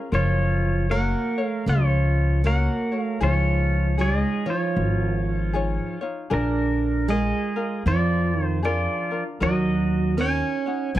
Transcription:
Already playing: C#4 F4 A#4
0.12 F#1 F3 F4 A#4 C#5
0.89 A#3 F#4 A#4 C#5 F#5
1.38 A3 C#5
1.46 F5
1.66 C#2 F3 F4 C#5
2.44 A#3 F#4 A#4 C#5 F#5
2.92 A3 F#4 C#5
3.01 F5
3.20 C#2 F3 D#4 F4 G#4 C#5
3.98 G3 D#4 F4 G#4 C#5 D5
4.02 G#4
4.16 G#3
4.20 D#5
4.46 F3 D#4 F4 C#5
4.50 F4 C#5
4.76 G#1
5.53 D#4 F4 G#4 C#5
6.01 D#4 F4 C#5
6.30 A#1 D3 D4 F4 G#4 A#4
6.35 D4
7.08 G#3 F4 G#4 A#4 D#5
7.56 F4 A#4
7.86 F2 F3 F4 D5
8.40 D#3
8.45 C5
8.63 F3 D4 F4 G#4 A#4 D5
9.11 D4 F4 A#4
9.40 D#2 F#3 D#4 F#4 A#4 C#5 D#5
10.17 C#4 D#4 F#4 A#4 C#5 G#5
10.21 C#5
10.66 D#4 F#4 C#5
10.95 A#1 A#3

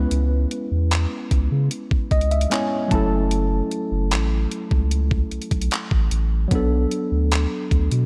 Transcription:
Already playing: G#3 B3 C#4 E4 B4
0.11 C#2, closed hi-hat
0.51 closed hi-hat
0.71 E2
0.91 clap, closed hi-hat
1.31 C#2, kick, closed hi-hat
1.51 C#3
1.71 closed hi-hat
1.91 kick
2.11 C#2 D#5, kick, closed hi-hat
2.21 closed hi-hat
2.31 E5, closed hi-hat
2.41 closed hi-hat
2.50 G#3 B3 C#4 E4 C#5 G#5, clap, closed hi-hat
2.88 F#1 F#3 A3 C#4 A5, kick, closed hi-hat
2.93 E4 A4
3.31 closed hi-hat
3.71 closed hi-hat
3.91 F#1
4.11 A1, clap, closed hi-hat
4.51 closed hi-hat
4.71 C#2, kick
4.91 closed hi-hat
5.11 kick
5.31 B1, closed hi-hat
5.42 closed hi-hat
5.51 B1, kick, closed hi-hat
5.62 closed hi-hat
5.71 clap, closed hi-hat
5.91 A1, kick
6.11 A1, closed hi-hat
6.48 B1 F#3 B3, kick, closed hi-hat
6.53 D4 A4
6.91 closed hi-hat
7.12 D2
7.32 clap, closed hi-hat
7.71 D2, kick, closed hi-hat
7.91 B2, closed hi-hat

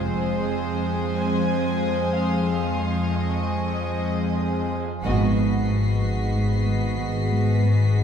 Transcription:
Already playing: F1 F2 G#3 C4 G#4 C5 G#5 C6 D#6
1.18 G#5
2.13 F5
2.47 F5
3.00 C#6
3.13 D#5
5.03 G#1 G#2 B3 F#4 G#4 B4 D#5 F#5 B6 C7
5.36 G#3
5.68 G#2
6.01 G#2
6.33 G#2
6.67 G#3
6.98 G#2
7.30 G#3
7.63 G#2
7.95 G#3

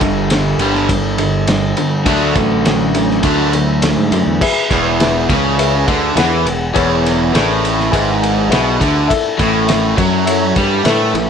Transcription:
Already playing: G2 D3 G3
0.00 G1 G2 D3, kick, ride
0.30 G2 D3, snare, ride
0.58 G1 G2 D3 G3, ride
0.75 snare
0.89 G2 D3, kick, ride
1.18 G2 D3, ride
1.47 G2 D3, snare, ride
1.77 G2 D3, ride
2.06 D2 D3 F#3 A3 D4, kick, ride
2.36 A1 D3 F#3 A3, kick, ride
2.65 D3 F#3 A3, snare, ride
2.95 D3 F#3 A3, ride
3.10 snare
3.23 D2 D3 F#3 A3 D4, kick, ride
3.53 D3 F#3 A3, ride
3.82 D3 F#3 A3, snare, ride
3.97 G#2
4.11 F#2 D3 F#3 A3, ride
4.27 E2
4.41 G#4 B4 E5, kick, crash
4.71 E1 E2, kick, snare, ride
5.00 G#4 B4 E5, snare, ride
5.29 C#2 C#3, kick, ride
5.57 G#4 B4 E5, ride
5.87 D2 D3, kick, ride
6.16 E2 E3 G#4 B4 F#5, snare, ride
6.45 E1 E2, ride
6.74 E1 E2 G#4 B4 C#5, kick, ride
7.06 snare, ride
7.32 A1 A2 G#4 B4 D5, snare, ride
7.63 B5, ride
7.80 snare
7.91 G#1 G#2 G#4 B4 E5 G#5, kick, ride
8.22 G#5, ride
8.49 B1 B2 G#4 B4 E5 F#5, snare, ride
8.80 D2 D3 E5, kick, ride
9.08 E4 A4 E5, kick, ride
9.38 A1 A2, kick, snare, ride
9.66 E4 A4 E5, snare, ride
9.97 F#2 F#3, kick, ride
10.25 E4 A4 C#5, ride
10.56 G2 G3, kick, ride
10.83 A2 A3 E4 A4 B4, snare, ride
11.14 A1 A2, ride

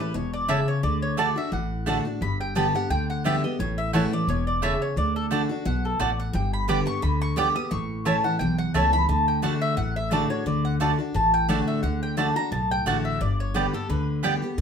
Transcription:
Already playing: A2
0.00 C#4 E4 B4
0.14 E1 B2 C#5
0.34 D5
0.48 C#3 A3 E4 C#5 E5 A5
0.68 C#5
0.83 D2 D3 D5
1.02 C#5
1.17 D3 A3 D4 F#4 D5 A5
1.36 D4 F#4 E5
1.52 A1 A2 F#5
1.86 D3 A3 D4 F#4 D5 A5
2.05 D4 F#4
2.21 G1 G2 B5
2.41 G5
2.55 D3 G3 B3 G4 D5 G5 A5
2.75 B3 G4 F#5
2.90 D2 D3 G5
3.10 F#5
3.24 D3 G3 B3 G4 D5 E5 G5
3.44 B3 G4 D#5
3.59 A1 A2 C#5
3.78 E5
3.93 E3 A3 C#4 E4 C#5 F#5 A5
4.12 C#4 E4 D5
4.27 E1 B2 C#5
4.47 D5
4.62 C#3 A3 E4 C#5 E5 A5
4.82 C#5
4.96 D2 D3 D5
5.16 A4
5.31 D3 A3 D4 F#4 D5 A5
5.49 D4 F#4
5.65 B1 B2 F#5
5.85 A4
5.99 A1 A2 A3 F#4 D5 A5
6.20 F#5
6.33 G1 G2 G5
6.53 B5
6.68 D3 G3 B3 G4 D5 G5 D6
6.86 B3 G4 C#6
7.02 D2 D3 B5
7.22 C#6
7.36 D3 G3 B3 G4 D5 G5 D6
7.56 B3 G4 D#6
7.71 A1 A2 C#6
8.05 E3 A3 C#4 E4 C#5 A5
8.24 C#4 E4 F#5
8.39 B1 E2 G5
8.58 F#5
8.74 C#2 E3 A3 C#4 E4 C#5 A5
8.93 C#4 E4 B5
9.08 D2 D3 A5
9.28 G5
9.42 D3 A3 D4 F#4 D5 F#5 A5
9.62 E5
9.77 A1 A2 F#5
9.96 E5
10.11 D3 A3 D4 F#4 D5 A5
10.30 D4 F#4 C#5
10.46 D2 D3 D5
10.65 F#5
10.80 D3 A3 D4 F#4 D5 A5
10.98 D4 F#4
11.14 A1 A2 A5
11.34 G5
11.48 D3 A3 D4 F#4 D5 F#5 A5
11.68 E5
11.83 D2 D3 F#5
12.03 G5
12.17 D3 A3 D4 F#4 D5 A5
12.36 D4 F#4 A#5
12.51 B1 A2 A5
12.71 G5
12.86 A1 D3 A3 D4 F#4 D5 F#5 A5
13.05 E5
13.21 G1 G2 D5
13.40 C#5
13.54 D3 G3 B3 G4 B4 D5 G5
13.73 B3 G4 A4
13.89 D2 D3 B4
14.23 D3 G3 B3 G4 D5 G5
14.42 B3 G4
14.58 D2 D3

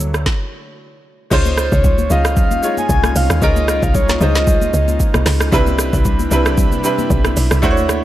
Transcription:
Already playing: D2 D3 F#3 A3 C#4 D4 E4 F#4 A4 C#5
0.00 low conga, shaker
0.14 cross-stick, shaker
0.26 kick, snare
1.30 C#2 G#3 C#4 D#4 F4 C5, kick, crash, shaker
1.46 high conga, shaker
1.58 cross-stick, shaker
1.72 C#2 C#5, kick, shaker
1.84 kick, low conga, shaker
1.98 high conga, shaker
2.09 C#2 G#3 C#4 D#4 F4 D#5 F5, low conga, shaker
2.25 cross-stick, shaker
2.37 F5, kick, low conga, shaker
2.51 high conga, shaker
2.62 G#3 C#4 D#4 F4 C#5, shaker
2.77 G#5, high conga, shaker
2.89 C2, kick, shaker
3.04 cross-stick, high conga, shaker
3.16 C2 F5, open hi-hat, shaker
3.30 D#2, cross-stick, shaker
3.41 C#2 G#3 C#4 D#4 F4 A#4 D#5, kick, shaker
3.56 high conga, shaker
3.68 D#5, cross-stick, shaker
3.83 C2 F5, kick, shaker
3.95 C#5, kick, low conga, shaker
4.09 snare, high conga, shaker
4.20 C#2 G#3 C#4 D#4 F4 C5 D#5, low conga, shaker
4.35 snare, shaker
4.47 kick, low conga, shaker
4.62 high conga, shaker
4.73 C#2, shaker
4.88 high conga, shaker
5.00 kick, shaker
5.14 C2, cross-stick, high conga, shaker
5.26 C#2, cross-stick, snare, open hi-hat, shaker
5.40 cross-stick, shaker
5.51 C2 C3 G3 C4 D4 E4 B4, kick, shaker
5.67 high conga, shaker
5.79 cross-stick, shaker
5.93 C2, kick, shaker
6.05 kick, low conga, shaker
6.19 high conga, shaker
6.30 C2 G3 C4 D4 E4 B4, low conga, shaker
6.46 cross-stick, shaker
6.58 kick, low conga, shaker
6.72 high conga, shaker
6.83 G3 C4 D4 E4 B4, shaker
6.99 high conga, shaker
7.10 B1, kick, shaker
7.25 cross-stick, high conga, shaker
7.37 B1, open hi-hat, shaker
7.51 C2, cross-stick, shaker
7.62 D2 A3 D4 E4 F#4 C5 C#5, kick, shaker
7.71 C#5
7.77 high conga, shaker
7.89 cross-stick, high conga, shaker

